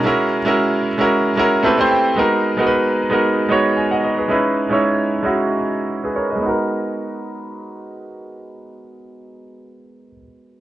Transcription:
0.03 G#3 C#4 E4 F#4 A#4
0.45 G#3 C#4 E4 F#4 A#4
0.98 G#3 C#4 E4 F#4 A#4
1.36 G#3 C#4 E4 F#4 A#4
1.63 A3 C4 E4 G4 B4 A5
1.77 A3 C4 E4 G4 C5
1.91 G5
2.16 G#3 B3 D#4 F#4 A#4
2.57 G#3 B3 D#4 F#4 A#4
2.67 B4
3.10 G#3 B3 D#4 F#4 A#4
3.48 G#3 B3 D#4 F#4 C#5
3.77 G#5
3.91 D#5 F#5
4.03 B4 D#5
4.18 G#4 B4
4.28 G#3 C#4 D#4 E4 B4
4.69 G#3 C#4 D#4 E4 C#5
5.23 G#3 C#4 D#4 E4 F#4
6.04 G#4 B4
6.16 A#4 C#5
6.30 B4 D#5
6.36 G#3 B3
6.42 D#4 F#4
6.49 A#4

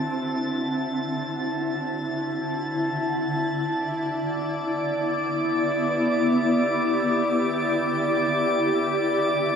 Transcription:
Already playing: D3 C4 E4 F#4 A5 A6
3.57 D5 D6
3.82 B3
4.84 G4

